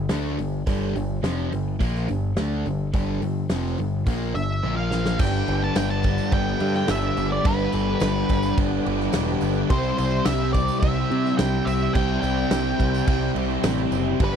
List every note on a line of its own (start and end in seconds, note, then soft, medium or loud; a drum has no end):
0.09 0.36 D2 medium
0.09 0.37 D3 medium
0.09 0.37 A3 medium
0.09 0.38 D4 medium
0.09 snare medium
0.09 open hi-hat medium
0.38 0.65 G1 medium
0.38 0.61 G2 medium
0.38 0.61 D3 medium
0.38 open hi-hat soft
0.67 0.93 G1 medium
0.67 0.94 G2 medium
0.67 0.94 D3 medium
0.67 0.95 G3 medium
0.67 kick medium
0.67 open hi-hat medium
0.95 1.22 G1 medium
0.95 1.18 G2 medium
0.95 1.18 D3 medium
0.95 open hi-hat soft
1.23 1.50 F1 medium
1.23 1.50 F2 medium
1.23 1.51 C3 medium
1.23 1.51 F3 medium
1.23 snare loud
1.23 open hi-hat medium
1.51 1.79 G1 medium
1.51 1.74 G2 medium
1.51 1.74 D3 medium
1.51 open hi-hat soft
1.79 2.07 A#1 medium
1.79 2.07 A#2 medium
1.79 2.08 F3 medium
1.79 2.08 A#3 medium
1.79 kick medium
1.79 open hi-hat medium
1.95 snare soft
2.08 2.35 G1 medium
2.08 2.31 G2 medium
2.08 2.31 D3 medium
2.08 open hi-hat soft
2.37 2.63 D2 medium
2.37 2.64 D3 medium
2.37 2.65 A3 medium
2.37 2.65 D4 loud
2.37 snare loud
2.37 open hi-hat medium
2.66 2.92 G1 medium
2.66 2.88 G2 medium
2.66 2.88 D3 medium
2.66 open hi-hat soft
2.94 3.20 G1 medium
2.94 3.21 G2 medium
2.94 3.21 D3 medium
2.94 3.22 G3 medium
2.94 kick medium
2.94 open hi-hat medium
3.22 3.48 G1 medium
3.22 3.45 G2 medium
3.22 3.45 D3 medium
3.22 open hi-hat soft
3.50 3.76 F1 medium
3.50 3.78 F2 medium
3.50 3.78 C3 medium
3.50 3.78 F3 medium
3.50 snare loud
3.50 open hi-hat medium
3.78 4.05 G1 medium
3.78 4.01 G2 medium
3.78 4.02 D3 medium
3.78 open hi-hat soft
4.06 4.33 A#1 medium
4.06 4.34 A#2 medium
4.06 4.34 F3 medium
4.06 4.35 A#3 loud
4.06 kick medium
4.06 open hi-hat medium
4.34 4.61 G1 medium
4.34 4.57 G2 medium
4.34 4.58 D3 medium
4.34 4.75 E5 medium
4.34 open hi-hat soft
4.63 5.16 A#1 medium
4.63 5.19 A#2 medium
4.63 5.19 F3 medium
4.63 5.19 A#3 loud
4.63 high tom soft
4.77 5.21 F5 medium
4.91 snare medium
5.06 snare medium
5.19 5.41 G1 medium
5.19 6.61 G2 medium
5.19 6.59 G2 medium
5.19 6.59 D3 medium
5.19 7.44 D3 medium
5.19 6.61 G3 medium
5.19 7.47 G3 medium
5.19 6.60 B3 medium
5.19 7.43 D4 medium
5.19 6.59 D4 medium
5.19 7.43 G4 medium
5.19 7.43 B4 medium
5.19 5.63 G5 loud
5.19 7.43 G5 medium
5.19 kick loud
5.19 crash loud
5.19 crash medium
5.34 tambourine soft
5.48 5.69 G1 medium
5.48 5.75 D3 medium
5.48 crash medium
5.64 5.77 A5 loud
5.75 6.18 G1 medium
5.75 6.60 D3 medium
5.75 5.90 G5 medium
5.75 snare loud
5.75 tambourine medium
5.75 crash medium
5.90 6.33 A5 loud
6.03 6.89 G3 medium
6.03 kick medium
6.03 tambourine medium
6.03 crash medium
6.18 tambourine medium
6.32 6.53 G1 medium
6.32 7.17 B3 medium
6.32 6.74 G5 loud
6.32 kick loud
6.32 crash medium
6.60 6.82 G2 medium
6.60 6.88 G2 medium
6.60 7.72 D3 medium
6.60 6.88 D3 medium
6.60 6.90 G3 medium
6.60 6.87 B3 medium
6.60 6.87 D4 medium
6.60 crash medium
6.74 6.90 G5 medium
6.74 snare soft
6.88 7.10 G1 medium
6.88 7.43 G2 medium
6.88 7.44 D3 medium
6.88 8.30 G3 medium
6.88 7.46 G3 medium
6.88 7.44 B3 medium
6.88 7.44 D4 medium
6.88 7.32 E5 medium
6.88 snare loud
6.88 tambourine medium
6.88 crash medium
7.17 7.38 G1 medium
7.17 8.57 B3 medium
7.17 tambourine medium
7.17 crash medium
7.31 7.46 D5 medium
7.31 tambourine soft
7.44 7.66 G1 loud
7.44 8.84 G2 medium
7.44 8.86 G2 medium
7.44 8.84 D3 medium
7.44 9.69 D3 loud
7.44 8.87 G3 medium
7.44 9.72 G3 loud
7.44 8.85 B3 medium
7.44 9.68 D4 medium
7.44 8.85 D4 medium
7.44 9.68 G4 medium
7.44 9.68 B4 medium
7.44 8.54 B4 medium
7.44 9.68 G5 medium
7.44 kick loud
7.44 crash medium
7.59 tambourine soft
7.72 7.94 G1 medium
7.72 8.00 D3 medium
7.72 tambourine medium
7.72 crash medium
8.00 8.22 G1 medium
8.00 8.85 D3 medium
8.00 snare loud
8.00 tambourine medium
8.00 crash medium
8.29 8.51 G1 medium
8.29 9.14 G3 medium
8.29 kick medium
8.29 tambourine medium
8.29 crash medium
8.43 tambourine medium
8.58 8.79 G1 medium
8.58 9.42 B3 medium
8.58 kick loud
8.58 crash medium
8.86 9.07 G1 medium
8.86 9.13 G2 medium
8.86 9.70 D3 medium
8.86 9.13 D3 medium
8.86 9.15 G3 medium
8.86 9.13 B3 medium
8.86 9.12 D4 medium
8.86 crash medium
9.00 snare soft
9.13 9.35 E1 medium
9.13 9.68 G2 medium
9.13 9.69 D3 medium
9.13 9.97 G3 medium
9.13 9.72 G3 medium
9.13 9.69 B3 medium
9.13 9.69 D4 medium
9.13 snare loud
9.13 tambourine medium
9.13 crash medium
9.41 9.63 G1 medium
9.41 9.71 B3 medium
9.41 tambourine medium
9.41 crash medium
9.55 tambourine soft
9.68 9.91 C2 medium
9.68 10.25 C3 medium
9.68 11.10 C3 medium
9.68 11.92 E4 medium
9.68 11.92 G4 medium
9.68 11.92 C5 medium
9.68 9.97 C5 medium
9.68 11.92 G5 medium
9.68 kick loud
9.68 crash medium
9.72 11.97 G3 loud
9.72 11.11 G3 medium
9.72 11.10 C4 medium
9.72 11.95 C4 medium
9.72 11.09 E4 loud
9.83 tambourine soft
9.98 10.20 C2 loud
9.98 10.54 G3 medium
9.98 10.27 C5 medium
9.98 tambourine medium
9.98 crash medium
10.25 10.68 C2 medium
10.25 11.09 C3 medium
10.25 10.52 E5 loud
10.25 snare loud
10.25 tambourine loud
10.25 crash medium
10.53 11.38 G3 medium
10.53 10.79 D5 medium
10.53 kick medium
10.53 tambourine medium
10.53 crash medium
10.68 tambourine medium
10.80 11.03 C2 medium
10.80 11.66 C4 medium
10.80 11.34 E5 loud
10.80 kick loud
10.80 crash medium
11.10 11.94 C3 medium
11.10 11.32 C3 medium
11.10 11.37 C3 medium
11.10 11.39 G3 medium
11.10 11.37 C4 medium
11.10 11.37 E4 medium
11.10 crash medium
11.25 snare soft
11.38 11.60 C2 loud
11.38 11.93 C3 medium
11.38 12.22 G3 medium
11.38 11.96 G3 medium
11.38 11.94 C4 medium
11.38 11.94 E4 medium
11.38 11.67 G5 loud
11.38 snare loud
11.38 tambourine loud
11.38 crash medium
11.65 11.88 C2 medium
11.65 13.06 C4 medium
11.65 11.95 E5 loud
11.65 tambourine medium
11.65 crash medium
11.81 tambourine soft
11.93 12.16 C2 medium
11.93 12.51 C3 medium
11.93 13.34 C3 medium
11.93 13.37 G3 medium
11.93 14.22 G3 medium
11.93 13.35 C4 medium
11.93 14.18 E4 medium
11.93 14.18 G4 medium
11.93 14.18 C5 medium
11.93 12.20 G5 loud
11.93 14.18 G5 medium
11.93 kick loud
11.93 tambourine soft
11.93 crash medium
11.98 14.20 C4 loud
11.98 13.35 E4 medium
12.21 12.44 C2 medium
12.21 12.79 G3 medium
12.21 13.31 G5 loud
12.21 tambourine medium
12.21 crash medium
12.38 tambourine soft
12.51 12.72 C2 medium
12.51 13.34 C3 medium
12.51 snare loud
12.51 tambourine loud
12.51 crash medium
12.66 tambourine soft
12.79 13.01 C2 medium
12.79 13.64 G3 medium
12.79 kick medium
12.79 crash medium
12.94 tambourine medium
13.07 13.29 C2 medium
13.07 13.91 C4 medium
13.07 kick loud
13.07 crash medium
13.23 tambourine soft
13.35 13.56 C2 medium
13.35 14.20 C3 medium
13.35 13.63 C3 medium
13.35 13.65 G3 medium
13.35 13.63 C4 medium
13.35 13.62 E4 medium
13.35 tambourine soft
13.35 crash medium
13.50 tambourine soft
13.63 13.85 A1 medium
13.63 14.19 C3 medium
13.63 14.36 G3 medium
13.63 14.22 G3 medium
13.63 14.20 C4 medium
13.63 14.20 E4 medium
13.63 snare loud
13.63 tambourine medium
13.63 crash medium
13.78 tambourine soft
13.92 14.13 F#1 medium
13.92 14.20 C4 medium
13.92 tambourine medium
13.92 crash medium
14.19 14.36 G1 medium
14.19 14.36 G2 medium
14.19 14.36 D3 medium
14.19 14.36 G3 medium
14.19 14.36 B3 medium
14.19 14.36 D4 medium
14.19 14.36 D4 loud
14.19 14.36 G4 medium
14.19 14.36 B4 medium
14.19 14.36 G5 medium
14.19 kick loud
14.19 crash medium
14.24 14.36 B4 loud